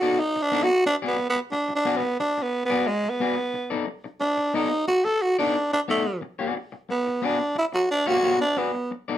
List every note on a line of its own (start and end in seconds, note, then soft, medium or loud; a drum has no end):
0.00 0.20 B3 medium
0.00 0.19 D#4 medium
0.00 0.21 F#4 loud
0.00 0.19 A4 medium
0.00 0.19 D5 medium
0.19 0.44 D#4 loud
0.36 muted clean electric guitar stroke soft
0.42 0.65 D4 loud
0.52 0.69 B3 medium
0.52 0.69 D#4 medium
0.52 0.68 A4 medium
0.52 0.68 D5 medium
0.63 0.86 F#4 loud
0.69 muted clean electric guitar stroke soft
0.86 0.97 D4 medium
0.86 muted clean electric guitar stroke soft
1.02 1.17 B3 medium
1.02 1.18 F#4 medium
1.02 1.18 G#4 medium
1.02 1.19 D5 medium
1.07 1.29 B3 medium
1.18 muted clean electric guitar stroke soft
1.30 1.40 B3 medium
1.35 muted clean electric guitar stroke medium
1.52 1.73 D4 medium
1.52 muted clean electric guitar stroke soft
1.69 muted clean electric guitar stroke soft
1.75 1.99 D4 medium
1.85 2.02 B3 medium
1.85 2.03 F#4 medium
1.85 2.03 G#4 medium
1.85 2.02 D5 medium
1.97 2.19 B3 medium
2.03 muted clean electric guitar stroke soft
2.20 2.44 D4 medium
2.20 muted clean electric guitar stroke medium
2.38 muted clean electric guitar stroke soft
2.43 2.65 B3 medium
2.65 2.88 B3 medium
2.70 2.88 B3 medium
2.70 2.87 F#4 medium
2.70 2.87 G#4 medium
2.70 2.87 D5 medium
2.87 3.11 G#3 medium
3.03 muted clean electric guitar stroke soft
3.10 3.77 B3 medium
3.20 3.37 B3 medium
3.20 3.37 F#4 medium
3.20 3.37 G#4 medium
3.20 3.36 D5 medium
3.38 muted clean electric guitar stroke soft
3.54 muted clean electric guitar stroke soft
3.70 3.86 B3 medium
3.70 3.87 D#4 medium
3.70 3.87 A4 medium
3.70 3.87 D5 medium
3.87 muted clean electric guitar stroke soft
4.04 muted clean electric guitar stroke medium
4.20 4.56 D4 medium
4.20 muted clean electric guitar stroke soft
4.37 muted clean electric guitar stroke soft
4.54 4.71 B3 medium
4.54 4.70 D#4 medium
4.54 4.87 D#4 medium
4.54 4.70 A4 medium
4.54 4.70 D5 medium
4.71 muted clean electric guitar stroke soft
4.88 5.06 F#4 medium
4.88 muted clean electric guitar stroke soft
5.05 5.24 A4 medium
5.05 muted clean electric guitar stroke soft
5.22 5.39 F#4 loud
5.39 5.56 B3 medium
5.39 5.70 D4 medium
5.39 5.56 D#4 medium
5.39 5.55 A4 medium
5.39 5.55 D5 medium
5.72 5.81 D4 medium
5.72 muted clean electric guitar stroke soft
5.88 6.21 A3 medium
5.88 6.05 B3 medium
5.88 6.05 D#4 medium
5.88 6.05 A4 medium
5.88 6.04 D5 medium
6.05 muted clean electric guitar stroke soft
6.21 muted clean electric guitar stroke soft
6.39 6.54 B3 medium
6.39 6.56 F#4 medium
6.39 6.56 G#4 medium
6.39 6.56 D5 medium
6.56 muted clean electric guitar stroke soft
6.72 muted clean electric guitar stroke medium
6.89 7.26 B3 medium
6.89 muted clean electric guitar stroke soft
7.07 muted clean electric guitar stroke soft
7.22 7.39 B3 medium
7.22 7.58 D4 medium
7.22 7.39 F#4 medium
7.22 7.40 G#4 medium
7.22 7.39 D5 medium
7.40 muted clean electric guitar stroke soft
7.55 7.66 E4 loud
7.55 muted clean electric guitar stroke soft
7.73 7.90 F#4 medium
7.73 muted clean electric guitar stroke medium
7.91 8.09 D4 loud
8.06 8.22 B3 medium
8.06 8.22 F#4 medium
8.06 8.41 F#4 loud
8.06 8.23 G#4 medium
8.06 8.23 D5 medium
8.23 8.44 B3 medium
8.23 8.40 F#4 medium
8.23 8.39 G#4 medium
8.23 8.38 D5 medium
8.40 8.59 D4 medium
8.40 muted clean electric guitar stroke soft
8.57 8.70 B3 medium
8.57 8.91 B3 medium
8.57 8.70 F#4 medium
8.57 8.71 G#4 medium
8.57 8.71 D5 medium
8.75 muted clean electric guitar stroke soft
8.91 muted clean electric guitar stroke soft
9.08 9.18 B3 medium
9.08 9.18 D#4 medium
9.08 9.18 A4 medium
9.08 9.18 D5 medium